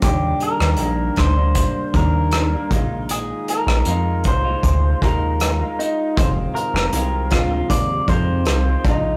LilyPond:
<<
  \new Staff \with { instrumentName = "Clean electric guitar" } { \time 4/4 \key f \dorian \tempo 4 = 78 g'8 bes'4 c''4 bes'4 r8 | aes'8 bes'4 c''4 bes'4 ees'8 | c''8 bes'4 f'8 d''8 c''4 ees'8 | }
  \new Staff \with { instrumentName = "Clean electric guitar" } { \clef bass \time 4/4 \key f \dorian <ees g bes d'>4 <ees g bes d'>8. <g bes d'>8. <ees g bes d'>8. <g bes d'>16 <bes, ees aes ees' f'>8~ | <bes, ees aes ees' f'>4 <ees aes ees' f'>8. <bes, aes ees' f'>8. <bes, ees aes ees' f'>8. <aes ees' f'>8. | <ees aes c' f'>4 <ees aes c' f'>8. <f, c ees aes c' f'>8. <f, c ees aes c' f'>8. <ees aes c' f'>16 <bes, ees aes ees' f'>8 | }
  \new Staff \with { instrumentName = "Analog synth bass" } { \clef bass \time 4/4 \key f \dorian ees,8 r16 ees,16 bes,,8 d,8. r16 ees,4 bes,,8~ | bes,,8 r16 bes,,16 f,8 c,8 d,8 ees,4 r8 | f,,8 r16 f,,16 c,8 d,8 ees,8 f,8 c,8 bes,,8 | }
  \new DrumStaff \with { instrumentName = "Drums" } \drummode { \time 4/4 <hh bd>8 hh16 ss16 hh8 <hh bd ss>8 <hh bd>8 <hh bd>8 <hh ss>8 <hh bd>8 | hh8 hh16 ss16 hh8 <hh bd>8 <hh bd>8 <hh bd>8 <hh ss>8 hh8 | <hh bd>8 hh16 ss16 hh8 <hh bd ss>8 <hh bd>8 <hh bd>8 <hh ss>8 <hh bd>8 | }
>>